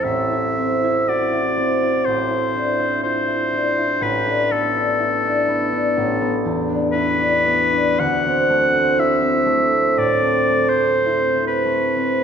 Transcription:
<<
  \new Staff \with { instrumentName = "Oboe" } { \time 4/4 \key a \minor \tempo 4 = 61 e''4 d''4 c''4 c''4 | b'8 a'2 r8 b'4 | fis''4 e''4 \tuplet 3/2 { d''4 c''8~ c''8 b'4 } | }
  \new Staff \with { instrumentName = "Harp" } { \time 4/4 \key a \minor <a,, c' e' a'>16 e'16 c'16 e'16 fis'16 e'16 c'16 e'16 a,,16 e'16 d'16 e'16 f'16 e'16 d'16 e'16 | a,,16 d'16 b16 d'16 e'16 d'16 b16 d'16 a,,16 b16 e,16 d'16 e'16 d'16 b16 d'16 | d,16 c'16 a16 c'16 e'16 c'16 a16 c'16 a,16 c'16 a16 c'16 e'16 c'16 a16 c'16 | }
>>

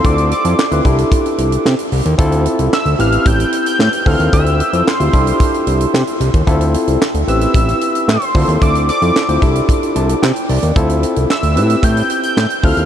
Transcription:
<<
  \new Staff \with { instrumentName = "Analog synth lead" } { \time 4/4 \key d \dorian \tempo 4 = 112 d'''8 d'''4 r2 r8 | r4 e'''8 f'''8 g'''8. g'''8. f'''8 | e'''4 c'''2 r4 | r4. e'''4. c'''4 |
d'''8 d'''4 r2 r8 | r4 e'''4 g'''8. g'''8. f'''8 | }
  \new Staff \with { instrumentName = "Tine electric piano" } { \time 4/4 \key d \dorian << { r1 | r1 | r1 | r1 |
r2 r8 a''8 g''8 d''8 | r1 | } \\ { <c' e' f' a'>8 r16 <c' e' f' a'>16 r16 <c' e' f' b'>16 <d' e' g' a'>4. r4 | <c' e' f' a'>4 r8 <c' e' g' b'>4. r8 <c' e' f' a'>8~ | <c' e' f' a'>8 r16 <c' e' f' a'>16 r16 <c' e' f' g'>16 <d' e' g' a'>4. r4 | <c' e' f' a'>4 r8 <c' e' g' b'>4. r8 <c' e' f' a'>8~ |
<c' e' f' a'>8 r16 <c' e' f' a'>16 r16 <c' e' f' c''>16 <d' e' g' a'>4. r4 | <c' e' f' a'>4 r8 <c' e' g' b'>4. r8 <c' e' f' a'>8 | } >> }
  \new Staff \with { instrumentName = "Analog synth bass" } { \clef bass \time 4/4 \key d \dorian d,8. f,16 r16 d,16 c,8 r8 c,8 c16 r16 c,16 ees,16 | d,8. c,16 r16 d,16 a,,8 a,,8 r8 a,16 r16 d,16 ees,16 | d,8. f,16 r16 d,16 c,8 r8 c,8 c16 r16 c,16 ees,16 | d,8. c,16 r16 d,16 a,,8 a,,8 r8 a,16 r16 d,16 ees,16 |
d,8. f,16 r16 d,16 c,8 r8 c,8 c16 r16 c,16 ees,16 | d,8. c,16 r16 d,16 a,8 a,8 r8 a,16 r16 d,16 ees,16 | }
  \new DrumStaff \with { instrumentName = "Drums" } \drummode { \time 4/4 <hh bd>16 hh16 hh16 hh16 <hc sn>16 hh16 <hh bd>16 hh16 <hh bd>16 hh16 hh16 hh16 <hc sn>16 hh16 hho16 hh16 | <hh bd>16 hh16 hh16 hh16 <hc sn>16 hh16 hh16 hh16 <hh bd>16 hh16 hh16 hh16 <hc sn>16 hh16 <hho bd>16 hh16 | <hh bd>16 hh16 hh16 hh16 <hc sn>16 hh16 <hh bd>16 hh16 <hh bd>16 hh16 hh16 hh16 <hc sn>16 hh16 hh16 <hh bd>16 | <hh bd>16 hh16 hh16 hh16 <hc sn>16 hh16 hh16 hh16 <hh bd>16 hh16 hh16 hh16 <hc sn>16 hh16 <hho bd>16 hh16 |
<hh bd>16 hh16 hh16 hh16 <hc sn>16 hh16 <hh bd>16 hh16 <hh bd>16 hh16 hh16 hh16 <hc sn>16 hh16 hho16 hh16 | <hh bd>16 hh16 hh16 hh16 <hc sn>16 hh16 hh16 hh16 <hh bd>16 hh16 hh16 hh16 <hc sn>16 hh16 <hho bd>16 hh16 | }
>>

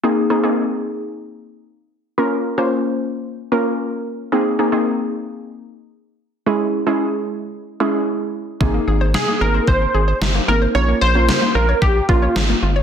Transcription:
<<
  \new Staff \with { instrumentName = "Analog polysynth" } { \time 4/4 \key aes \major \tempo 4 = 112 r1 | r1 | r1 | r1 |
r4 aes'8 bes'8 c''4. bes'8 | des''8 c''4 bes'8 g'8 f'4 r8 | }
  \new Staff \with { instrumentName = "Synth arpeggio sound" } { \time 4/4 \key aes \major r1 | r1 | r1 | r1 |
c16 bes16 aes'16 c''16 c16 bes16 aes'16 c''16 r8 aes'16 c''16 c16 bes16 aes'16 c''16 | des16 bes16 f'16 des''16 des16 bes16 f'16 des''16 r8 f'16 des''16 des16 bes16 f'16 des''16 | }
  \new Staff \with { instrumentName = "Synth pluck" } { \time 4/4 \key aes \major <bes c' ees' aes'>8 <bes c' ees' aes'>16 <bes c' ees' aes'>4.~ <bes c' ees' aes'>16 r4. | <bes des' f' bes'>8. <bes des' f' c''>4. r16 <bes des' f' bes'>4~ <bes des' f' bes'>16 r16 | <bes c' ees' aes'>8 <bes c' ees' aes'>16 <bes c' ees' aes'>4.~ <bes c' ees' aes'>16 r4. | <aes des' fes' aes'>8. <aes des' fes' aes'>4. r16 <aes des' fes' aes'>4~ <aes des' fes' aes'>16 r16 |
<bes c' ees' aes'>4~ <bes c' ees' aes'>16 r16 <bes c' ees' aes'>4.~ <bes c' ees' aes'>16 r16 <bes c' ees' bes'>8 | <bes des' f' bes'>8. <bes des' f' bes'>4. r16 <bes des' f' bes'>4~ <bes des' f' bes'>16 r16 | }
  \new Staff \with { instrumentName = "Analog synth bass" } { \clef bass \time 4/4 \key aes \major r1 | r1 | r1 | r1 |
aes,,8 aes,,8. r16 aes,,8 aes,,8 aes,,8 g,,8 aes,,8 | bes,,8 bes,,8. r16 bes,,8 bes,,8 bes,,8 aes,,8 g,,8 | }
  \new DrumStaff \with { instrumentName = "Drums" } \drummode { \time 4/4 r4 r4 r4 r4 | r4 r4 r4 r4 | r4 r4 r4 r4 | r4 r4 r4 r4 |
bd4 sn4 bd4 sn4 | r4 sn4 bd8 bd8 sn4 | }
>>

